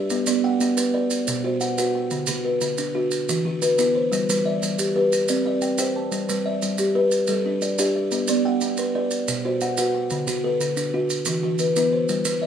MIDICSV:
0, 0, Header, 1, 4, 480
1, 0, Start_track
1, 0, Key_signature, 1, "major"
1, 0, Tempo, 334076
1, 152, Time_signature, 12, 3, 24, 8
1, 10712, Tempo, 331126
1, 17977, End_track
2, 0, Start_track
2, 0, Title_t, "Kalimba"
2, 0, Program_c, 0, 108
2, 0, Note_on_c, 0, 67, 78
2, 0, Note_on_c, 0, 76, 62
2, 154, Note_off_c, 0, 67, 0
2, 393, Note_on_c, 0, 74, 67
2, 395, Note_on_c, 0, 59, 85
2, 631, Note_off_c, 0, 76, 0
2, 633, Note_on_c, 0, 78, 74
2, 875, Note_off_c, 0, 59, 0
2, 1108, Note_on_c, 0, 71, 82
2, 1114, Note_off_c, 0, 74, 0
2, 1330, Note_off_c, 0, 71, 0
2, 1347, Note_on_c, 0, 71, 65
2, 1354, Note_off_c, 0, 78, 0
2, 1839, Note_on_c, 0, 47, 84
2, 2072, Note_off_c, 0, 71, 0
2, 2079, Note_on_c, 0, 72, 67
2, 2318, Note_off_c, 0, 47, 0
2, 2563, Note_on_c, 0, 71, 78
2, 2798, Note_off_c, 0, 72, 0
2, 2804, Note_on_c, 0, 79, 61
2, 3040, Note_off_c, 0, 71, 0
2, 3276, Note_on_c, 0, 50, 85
2, 3277, Note_on_c, 0, 66, 74
2, 3522, Note_off_c, 0, 79, 0
2, 3758, Note_off_c, 0, 50, 0
2, 3998, Note_off_c, 0, 66, 0
2, 4001, Note_on_c, 0, 62, 79
2, 4219, Note_off_c, 0, 62, 0
2, 4236, Note_on_c, 0, 62, 72
2, 4731, Note_on_c, 0, 52, 97
2, 4958, Note_off_c, 0, 62, 0
2, 4969, Note_on_c, 0, 66, 68
2, 5206, Note_off_c, 0, 52, 0
2, 5448, Note_on_c, 0, 64, 72
2, 5680, Note_on_c, 0, 72, 65
2, 5685, Note_off_c, 0, 66, 0
2, 5924, Note_off_c, 0, 64, 0
2, 6172, Note_on_c, 0, 71, 80
2, 6173, Note_on_c, 0, 55, 84
2, 6401, Note_off_c, 0, 72, 0
2, 6404, Note_on_c, 0, 74, 64
2, 6647, Note_off_c, 0, 55, 0
2, 6878, Note_on_c, 0, 67, 79
2, 6886, Note_off_c, 0, 71, 0
2, 7108, Note_off_c, 0, 67, 0
2, 7122, Note_off_c, 0, 74, 0
2, 7125, Note_on_c, 0, 67, 70
2, 7608, Note_on_c, 0, 60, 78
2, 7842, Note_off_c, 0, 67, 0
2, 7850, Note_on_c, 0, 74, 65
2, 8084, Note_off_c, 0, 60, 0
2, 8324, Note_on_c, 0, 72, 76
2, 8564, Note_off_c, 0, 74, 0
2, 8566, Note_on_c, 0, 81, 61
2, 8801, Note_off_c, 0, 72, 0
2, 9034, Note_on_c, 0, 71, 63
2, 9035, Note_on_c, 0, 55, 81
2, 9277, Note_on_c, 0, 74, 63
2, 9281, Note_off_c, 0, 81, 0
2, 9516, Note_off_c, 0, 55, 0
2, 9754, Note_off_c, 0, 71, 0
2, 9756, Note_on_c, 0, 67, 80
2, 9973, Note_off_c, 0, 67, 0
2, 9991, Note_on_c, 0, 67, 61
2, 9995, Note_off_c, 0, 74, 0
2, 10472, Note_on_c, 0, 55, 83
2, 10709, Note_on_c, 0, 69, 67
2, 10711, Note_off_c, 0, 67, 0
2, 10953, Note_off_c, 0, 55, 0
2, 11192, Note_on_c, 0, 67, 80
2, 11434, Note_off_c, 0, 69, 0
2, 11436, Note_on_c, 0, 76, 63
2, 11676, Note_off_c, 0, 67, 0
2, 11922, Note_on_c, 0, 74, 80
2, 11923, Note_on_c, 0, 59, 85
2, 12159, Note_off_c, 0, 76, 0
2, 12164, Note_on_c, 0, 78, 72
2, 12402, Note_off_c, 0, 59, 0
2, 12642, Note_off_c, 0, 74, 0
2, 12644, Note_on_c, 0, 71, 86
2, 12863, Note_off_c, 0, 71, 0
2, 12880, Note_on_c, 0, 71, 72
2, 12883, Note_off_c, 0, 78, 0
2, 13360, Note_on_c, 0, 47, 81
2, 13601, Note_off_c, 0, 71, 0
2, 13604, Note_on_c, 0, 72, 70
2, 13841, Note_off_c, 0, 47, 0
2, 14080, Note_on_c, 0, 71, 82
2, 14323, Note_off_c, 0, 72, 0
2, 14323, Note_on_c, 0, 79, 65
2, 14561, Note_off_c, 0, 71, 0
2, 14795, Note_on_c, 0, 66, 77
2, 14797, Note_on_c, 0, 50, 84
2, 15039, Note_on_c, 0, 69, 72
2, 15042, Note_off_c, 0, 79, 0
2, 15279, Note_off_c, 0, 50, 0
2, 15512, Note_on_c, 0, 62, 85
2, 15518, Note_off_c, 0, 66, 0
2, 15740, Note_off_c, 0, 62, 0
2, 15757, Note_on_c, 0, 62, 62
2, 15759, Note_off_c, 0, 69, 0
2, 16235, Note_on_c, 0, 52, 91
2, 16470, Note_on_c, 0, 66, 67
2, 16477, Note_off_c, 0, 62, 0
2, 16716, Note_off_c, 0, 52, 0
2, 16959, Note_on_c, 0, 64, 75
2, 17192, Note_off_c, 0, 66, 0
2, 17197, Note_on_c, 0, 72, 64
2, 17436, Note_off_c, 0, 64, 0
2, 17667, Note_on_c, 0, 71, 70
2, 17670, Note_on_c, 0, 55, 84
2, 17908, Note_on_c, 0, 74, 65
2, 17914, Note_off_c, 0, 72, 0
2, 17977, Note_off_c, 0, 55, 0
2, 17977, Note_off_c, 0, 71, 0
2, 17977, Note_off_c, 0, 74, 0
2, 17977, End_track
3, 0, Start_track
3, 0, Title_t, "Kalimba"
3, 0, Program_c, 1, 108
3, 0, Note_on_c, 1, 62, 75
3, 0, Note_on_c, 1, 74, 66
3, 155, Note_off_c, 1, 62, 0
3, 157, Note_on_c, 1, 59, 92
3, 394, Note_off_c, 1, 74, 0
3, 635, Note_off_c, 1, 59, 0
3, 637, Note_on_c, 1, 79, 65
3, 870, Note_on_c, 1, 59, 77
3, 1350, Note_on_c, 1, 74, 80
3, 1353, Note_off_c, 1, 59, 0
3, 1356, Note_off_c, 1, 79, 0
3, 1829, Note_on_c, 1, 72, 68
3, 1833, Note_off_c, 1, 74, 0
3, 2069, Note_on_c, 1, 66, 76
3, 2309, Note_on_c, 1, 78, 74
3, 2538, Note_off_c, 1, 66, 0
3, 2542, Note_off_c, 1, 78, 0
3, 2553, Note_off_c, 1, 72, 0
3, 2555, Note_on_c, 1, 66, 84
3, 2559, Note_on_c, 1, 78, 64
3, 3037, Note_off_c, 1, 66, 0
3, 3037, Note_on_c, 1, 50, 82
3, 3279, Note_off_c, 1, 78, 0
3, 3514, Note_on_c, 1, 71, 61
3, 3518, Note_off_c, 1, 50, 0
3, 3754, Note_on_c, 1, 50, 77
3, 4233, Note_on_c, 1, 66, 86
3, 4237, Note_off_c, 1, 50, 0
3, 4237, Note_off_c, 1, 71, 0
3, 4476, Note_off_c, 1, 66, 0
3, 4724, Note_on_c, 1, 66, 71
3, 4958, Note_on_c, 1, 52, 75
3, 5201, Note_on_c, 1, 71, 80
3, 5418, Note_off_c, 1, 71, 0
3, 5436, Note_on_c, 1, 71, 70
3, 5439, Note_off_c, 1, 52, 0
3, 5439, Note_on_c, 1, 59, 81
3, 5442, Note_off_c, 1, 66, 0
3, 5914, Note_on_c, 1, 55, 88
3, 5920, Note_off_c, 1, 59, 0
3, 6158, Note_off_c, 1, 71, 0
3, 6397, Note_off_c, 1, 55, 0
3, 6400, Note_on_c, 1, 76, 66
3, 6643, Note_on_c, 1, 55, 70
3, 7120, Note_off_c, 1, 76, 0
3, 7122, Note_off_c, 1, 55, 0
3, 7122, Note_on_c, 1, 71, 76
3, 7361, Note_off_c, 1, 71, 0
3, 7604, Note_on_c, 1, 74, 66
3, 7837, Note_on_c, 1, 60, 81
3, 8072, Note_on_c, 1, 79, 65
3, 8296, Note_off_c, 1, 79, 0
3, 8313, Note_on_c, 1, 79, 61
3, 8315, Note_on_c, 1, 67, 84
3, 8318, Note_off_c, 1, 60, 0
3, 8321, Note_off_c, 1, 74, 0
3, 8786, Note_on_c, 1, 55, 75
3, 8797, Note_off_c, 1, 67, 0
3, 9035, Note_off_c, 1, 79, 0
3, 9271, Note_off_c, 1, 55, 0
3, 9276, Note_on_c, 1, 76, 59
3, 9518, Note_on_c, 1, 55, 77
3, 9988, Note_on_c, 1, 71, 83
3, 9995, Note_off_c, 1, 76, 0
3, 9996, Note_off_c, 1, 55, 0
3, 10467, Note_on_c, 1, 69, 66
3, 10470, Note_off_c, 1, 71, 0
3, 10714, Note_on_c, 1, 62, 71
3, 10949, Note_on_c, 1, 74, 72
3, 11175, Note_off_c, 1, 62, 0
3, 11175, Note_off_c, 1, 74, 0
3, 11192, Note_off_c, 1, 69, 0
3, 11192, Note_on_c, 1, 62, 84
3, 11192, Note_on_c, 1, 74, 73
3, 11666, Note_on_c, 1, 59, 81
3, 11676, Note_off_c, 1, 62, 0
3, 11917, Note_off_c, 1, 74, 0
3, 12153, Note_off_c, 1, 59, 0
3, 12157, Note_on_c, 1, 79, 68
3, 12402, Note_on_c, 1, 59, 86
3, 12880, Note_off_c, 1, 79, 0
3, 12881, Note_on_c, 1, 74, 87
3, 12882, Note_off_c, 1, 59, 0
3, 13362, Note_off_c, 1, 74, 0
3, 13363, Note_on_c, 1, 72, 66
3, 13605, Note_on_c, 1, 66, 82
3, 13846, Note_on_c, 1, 78, 80
3, 14069, Note_off_c, 1, 66, 0
3, 14070, Note_off_c, 1, 78, 0
3, 14083, Note_off_c, 1, 72, 0
3, 14086, Note_on_c, 1, 66, 91
3, 14087, Note_on_c, 1, 78, 70
3, 14564, Note_off_c, 1, 66, 0
3, 14564, Note_on_c, 1, 50, 88
3, 14804, Note_off_c, 1, 78, 0
3, 15042, Note_on_c, 1, 71, 65
3, 15043, Note_off_c, 1, 50, 0
3, 15280, Note_on_c, 1, 50, 70
3, 15760, Note_off_c, 1, 50, 0
3, 15761, Note_off_c, 1, 71, 0
3, 15762, Note_on_c, 1, 66, 85
3, 16001, Note_off_c, 1, 66, 0
3, 16238, Note_on_c, 1, 66, 69
3, 16478, Note_on_c, 1, 52, 71
3, 16716, Note_on_c, 1, 71, 70
3, 16939, Note_off_c, 1, 71, 0
3, 16956, Note_on_c, 1, 71, 68
3, 16957, Note_off_c, 1, 52, 0
3, 16957, Note_off_c, 1, 66, 0
3, 16959, Note_on_c, 1, 59, 87
3, 17427, Note_on_c, 1, 55, 77
3, 17437, Note_off_c, 1, 59, 0
3, 17674, Note_off_c, 1, 71, 0
3, 17903, Note_on_c, 1, 76, 62
3, 17909, Note_off_c, 1, 55, 0
3, 17977, Note_off_c, 1, 76, 0
3, 17977, End_track
4, 0, Start_track
4, 0, Title_t, "Drums"
4, 142, Note_on_c, 9, 70, 65
4, 286, Note_off_c, 9, 70, 0
4, 381, Note_on_c, 9, 70, 77
4, 525, Note_off_c, 9, 70, 0
4, 871, Note_on_c, 9, 70, 59
4, 1015, Note_off_c, 9, 70, 0
4, 1113, Note_on_c, 9, 70, 81
4, 1257, Note_off_c, 9, 70, 0
4, 1587, Note_on_c, 9, 70, 57
4, 1731, Note_off_c, 9, 70, 0
4, 1833, Note_on_c, 9, 70, 80
4, 1976, Note_off_c, 9, 70, 0
4, 2309, Note_on_c, 9, 70, 53
4, 2452, Note_off_c, 9, 70, 0
4, 2557, Note_on_c, 9, 70, 75
4, 2701, Note_off_c, 9, 70, 0
4, 3026, Note_on_c, 9, 70, 58
4, 3170, Note_off_c, 9, 70, 0
4, 3257, Note_on_c, 9, 70, 70
4, 3400, Note_off_c, 9, 70, 0
4, 3750, Note_on_c, 9, 70, 57
4, 3894, Note_off_c, 9, 70, 0
4, 3991, Note_on_c, 9, 70, 76
4, 4135, Note_off_c, 9, 70, 0
4, 4472, Note_on_c, 9, 70, 64
4, 4616, Note_off_c, 9, 70, 0
4, 4725, Note_on_c, 9, 70, 79
4, 4869, Note_off_c, 9, 70, 0
4, 5201, Note_on_c, 9, 70, 60
4, 5345, Note_off_c, 9, 70, 0
4, 5437, Note_on_c, 9, 70, 77
4, 5580, Note_off_c, 9, 70, 0
4, 5930, Note_on_c, 9, 70, 67
4, 6073, Note_off_c, 9, 70, 0
4, 6172, Note_on_c, 9, 70, 89
4, 6316, Note_off_c, 9, 70, 0
4, 6646, Note_on_c, 9, 70, 60
4, 6790, Note_off_c, 9, 70, 0
4, 6881, Note_on_c, 9, 70, 84
4, 7025, Note_off_c, 9, 70, 0
4, 7364, Note_on_c, 9, 70, 69
4, 7508, Note_off_c, 9, 70, 0
4, 7590, Note_on_c, 9, 70, 81
4, 7733, Note_off_c, 9, 70, 0
4, 8068, Note_on_c, 9, 70, 61
4, 8212, Note_off_c, 9, 70, 0
4, 8305, Note_on_c, 9, 70, 81
4, 8449, Note_off_c, 9, 70, 0
4, 8791, Note_on_c, 9, 70, 67
4, 8934, Note_off_c, 9, 70, 0
4, 9038, Note_on_c, 9, 70, 85
4, 9182, Note_off_c, 9, 70, 0
4, 9513, Note_on_c, 9, 70, 57
4, 9656, Note_off_c, 9, 70, 0
4, 9738, Note_on_c, 9, 70, 79
4, 9882, Note_off_c, 9, 70, 0
4, 10221, Note_on_c, 9, 70, 57
4, 10365, Note_off_c, 9, 70, 0
4, 10449, Note_on_c, 9, 70, 64
4, 10593, Note_off_c, 9, 70, 0
4, 10945, Note_on_c, 9, 70, 51
4, 11090, Note_off_c, 9, 70, 0
4, 11190, Note_on_c, 9, 70, 71
4, 11335, Note_off_c, 9, 70, 0
4, 11666, Note_on_c, 9, 70, 48
4, 11811, Note_off_c, 9, 70, 0
4, 11901, Note_on_c, 9, 70, 73
4, 12046, Note_off_c, 9, 70, 0
4, 12383, Note_on_c, 9, 70, 50
4, 12528, Note_off_c, 9, 70, 0
4, 12621, Note_on_c, 9, 70, 64
4, 12766, Note_off_c, 9, 70, 0
4, 13106, Note_on_c, 9, 70, 52
4, 13251, Note_off_c, 9, 70, 0
4, 13355, Note_on_c, 9, 70, 76
4, 13500, Note_off_c, 9, 70, 0
4, 13835, Note_on_c, 9, 70, 56
4, 13980, Note_off_c, 9, 70, 0
4, 14071, Note_on_c, 9, 70, 77
4, 14216, Note_off_c, 9, 70, 0
4, 14547, Note_on_c, 9, 70, 61
4, 14692, Note_off_c, 9, 70, 0
4, 14798, Note_on_c, 9, 70, 75
4, 14943, Note_off_c, 9, 70, 0
4, 15281, Note_on_c, 9, 70, 61
4, 15426, Note_off_c, 9, 70, 0
4, 15513, Note_on_c, 9, 70, 76
4, 15658, Note_off_c, 9, 70, 0
4, 15992, Note_on_c, 9, 70, 58
4, 16137, Note_off_c, 9, 70, 0
4, 16218, Note_on_c, 9, 70, 86
4, 16363, Note_off_c, 9, 70, 0
4, 16700, Note_on_c, 9, 70, 60
4, 16845, Note_off_c, 9, 70, 0
4, 16954, Note_on_c, 9, 70, 75
4, 17099, Note_off_c, 9, 70, 0
4, 17427, Note_on_c, 9, 70, 66
4, 17572, Note_off_c, 9, 70, 0
4, 17659, Note_on_c, 9, 70, 83
4, 17804, Note_off_c, 9, 70, 0
4, 17977, End_track
0, 0, End_of_file